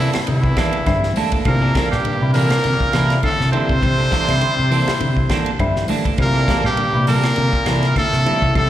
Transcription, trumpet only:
0.00 0.11 E4 medium
0.27 1.12 E4 medium
1.47 1.90 A#4 loud
1.91 2.31 G4 medium
2.33 3.19 A#4 loud
3.25 3.52 A4 loud
3.53 5.86 C5 loud
6.21 6.63 A#4 loud
6.66 7.06 G4 loud
7.08 7.93 A#4 loud
7.98 8.53 A4 loud
8.56 8.70 A4 loud

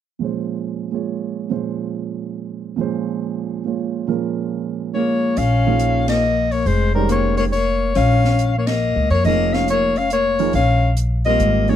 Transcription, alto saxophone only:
4.96 5.39 A#3 medium
5.38 6.08 C#4 medium
6.09 6.52 A#3 medium
6.52 6.68 A#3 medium
6.67 6.95 G#3 medium
6.95 7.08 G3 medium
7.09 7.36 A#3 medium
7.39 7.46 A#3 medium
7.53 7.93 A#3 medium
7.96 8.54 C#4 medium
8.58 8.68 A#3 medium
8.68 9.10 A#3 medium
9.13 9.25 A#3 medium
9.27 9.57 A#3 medium
9.55 9.69 C#4 medium
9.71 10.00 A#3 medium
9.99 10.11 C#4 medium
10.12 10.51 A#3 medium
10.56 10.92 C#4 medium
11.28 11.70 A#3 medium
11.70 11.76 A#3 medium

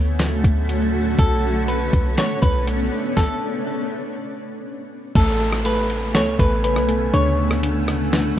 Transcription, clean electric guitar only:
1.19 1.65 A4 loud
1.68 2.15 B4 medium
2.18 2.42 C#5 medium
2.42 2.66 B4 medium
3.17 3.63 A4 loud
5.16 5.62 A4 medium
5.66 6.12 B4 medium
6.15 6.38 C#5 medium
6.40 6.63 B4 medium
7.14 7.60 C#5 loud

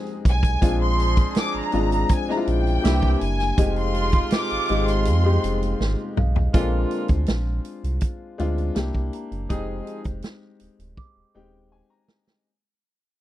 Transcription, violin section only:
0.29 0.79 G#5 loud
0.83 1.33 C6 loud
1.38 1.54 D6 loud
1.58 2.12 A#5 loud
2.12 2.30 G#5 loud
2.31 2.48 A#5 medium
2.49 3.18 G5 loud
3.23 3.77 G#5 loud
3.79 4.29 C6 loud
4.35 4.89 D6 loud
4.90 5.81 C6 medium

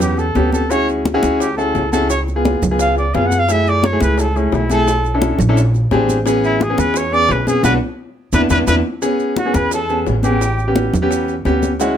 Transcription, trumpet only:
0.01 0.20 G4 medium
0.18 0.52 A4 loud
0.53 0.72 A4 medium
0.70 0.88 C#5 loud
1.41 1.56 G4 medium
1.57 1.90 A4 medium
1.92 2.08 A4 loud
2.10 2.20 C#5 medium
2.81 2.96 F5 medium
2.98 3.16 D5 medium
3.14 3.28 F5 medium
3.26 3.40 F#5 loud
3.39 3.53 F5 loud
3.51 3.70 E5 loud
3.69 3.87 D5 loud
3.85 4.02 C#5 medium
4.03 4.21 B4 medium
4.20 4.38 A4 medium
4.37 4.56 C#4 medium
4.55 4.71 E4 medium
4.72 5.20 A4 loud
6.45 6.64 E4 medium
6.63 6.80 G#4 medium
6.79 6.99 B4 loud
6.97 7.15 C#5 loud
7.13 7.33 D5 loud
7.31 7.47 B4 loud
7.48 7.64 G#4 loud
7.65 7.73 B4 loud
8.34 8.42 B4 medium
8.50 8.59 B4 medium
8.67 8.76 B4 medium
9.38 9.56 F#4 medium
9.55 9.72 B4 loud
9.73 10.05 A4 medium
10.24 10.72 G4 medium

